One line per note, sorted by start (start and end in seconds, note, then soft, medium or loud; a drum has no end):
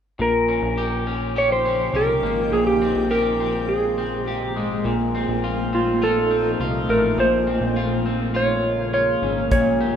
0.19 0.61 A#1 medium
0.19 2.51 A#2 medium
0.19 2.50 C#3 medium
0.19 2.50 F3 medium
0.19 2.50 D#4 medium
0.19 1.04 A#4 medium
0.19 4.81 G5 medium
0.48 1.06 C#4 medium
0.62 1.90 A#1 medium
0.78 1.36 G4 medium
1.07 1.64 C#4 medium
1.36 1.94 G4 medium
1.36 1.52 C#5 medium
1.52 1.96 C5 medium
1.65 2.58 C#4 medium
1.93 2.21 C2 medium
1.93 3.10 G4 medium
1.93 2.55 A#4 medium
2.22 2.50 G#1 medium
2.22 2.85 A#3 soft
2.52 2.93 A#1 medium
2.52 9.47 A#2 medium
2.52 4.84 A#2 medium
2.52 4.83 G#3 medium
2.52 4.83 A#3 medium
2.52 2.66 G#4 medium
2.67 3.12 G4 medium
2.82 3.40 C4 medium
2.95 4.57 A#1 medium
3.11 3.69 G4 medium
3.11 3.71 A#4 medium
3.40 3.98 C4 soft
3.69 4.26 G#4 medium
3.98 5.14 C4 soft
4.26 4.52 G4 medium
4.26 4.91 G4 medium
4.55 4.83 G#1 medium
4.55 4.91 G#3 medium
4.84 5.26 A#1 medium
4.84 7.17 A#2 medium
4.84 7.15 F3 medium
4.84 7.16 A3 medium
4.84 7.15 D#4 medium
5.15 5.72 C4 soft
5.28 6.56 A#1 medium
5.44 6.02 F4 medium
5.73 6.30 C4 soft
5.73 6.04 F4 medium
6.02 6.60 F4 medium
6.02 6.57 A4 medium
6.31 7.47 C4 medium
6.60 6.87 C2 medium
6.60 7.76 F4 medium
6.89 7.17 A1 medium
6.89 7.24 A3 soft
6.89 7.17 A#4 medium
7.17 7.59 A#1 medium
7.17 9.50 A#2 medium
7.17 9.49 C#3 medium
7.17 9.49 G#3 medium
7.17 9.49 A#3 medium
7.17 8.03 C5 medium
7.47 8.04 C4 medium
7.61 9.18 A#1 medium
7.76 8.34 F4 medium
8.06 8.64 C4 soft
8.35 8.93 F4 medium
8.35 8.93 C#5 medium
8.93 9.84 F4 medium
8.93 9.51 C#5 medium
9.22 9.50 G#1 medium
9.22 9.84 C#4 soft
9.51 9.93 A#1 medium
9.51 9.96 A#2 medium
9.51 9.96 C#5 medium
9.51 kick medium
9.51 closed hi-hat medium
9.81 9.96 G4 soft